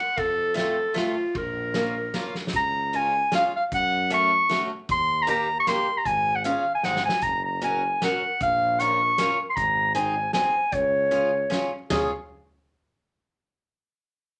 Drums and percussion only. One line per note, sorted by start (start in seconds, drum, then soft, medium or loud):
0.00 ride soft
0.18 kick medium
0.18 ride soft
0.57 snare medium
0.57 ride soft
0.96 snare medium
0.96 ride soft
1.35 kick medium
1.35 ride soft
1.74 snare medium
1.74 ride soft
2.14 snare medium
2.14 ride soft
2.35 snare soft
2.47 snare medium
2.53 kick medium
2.53 closed hi-hat soft
2.93 closed hi-hat soft
3.32 snare medium
3.32 closed hi-hat soft
3.72 kick medium
3.72 closed hi-hat soft
4.12 closed hi-hat soft
4.51 snare medium
4.51 closed hi-hat soft
4.89 kick medium
4.89 closed hi-hat soft
5.28 closed hi-hat soft
5.67 snare medium
5.67 closed hi-hat soft
6.05 kick medium
6.05 closed hi-hat soft
6.44 closed hi-hat soft
6.83 snare soft
6.96 snare medium
7.09 snare medium
7.21 kick medium
7.21 closed hi-hat soft
7.61 closed hi-hat soft
8.02 snare medium
8.02 closed hi-hat soft
8.40 kick medium
8.40 closed hi-hat soft
8.79 closed hi-hat soft
9.18 snare medium
9.18 closed hi-hat medium
9.57 kick medium
9.57 closed hi-hat soft
9.96 closed hi-hat soft
10.33 snare medium
10.33 closed hi-hat soft
10.72 kick medium
10.72 closed hi-hat soft
11.12 closed hi-hat soft
11.51 snare medium
11.51 closed hi-hat soft
11.90 snare medium
11.90 floor tom medium